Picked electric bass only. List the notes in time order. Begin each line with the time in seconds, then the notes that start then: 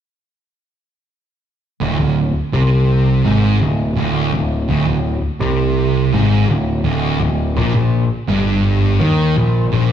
1.81 D1
2.00 D1
2.53 C2
3.25 G#1
3.61 D1
3.97 D1
4.33 D1
4.69 D1
4.87 D1
5.40 C2
6.13 G#1
6.49 D1
6.84 D1
7.20 D1
7.57 A#1
7.75 A#1
8.28 G1
9.00 D#2
9.36 A#1
9.73 A#1